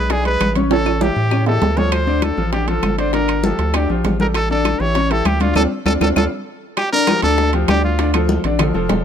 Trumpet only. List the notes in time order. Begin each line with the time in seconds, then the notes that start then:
Already playing: B4
0.11 G#4
0.26 B4
0.72 A4
1.02 G4
1.47 A4
1.77 C#5
1.93 C5
2.23 A4
2.53 G4
2.68 A4
2.98 C5
3.14 A#4
3.45 A4
3.75 G4
4.21 A#4
4.35 A4
4.51 A4
4.81 C#5
5.11 A4
5.26 G4
5.41 F4
5.56 A4
5.86 A4
6.02 A4
6.17 A4
6.77 G4
6.92 A#4
7.23 A4
7.69 G4
7.84 F4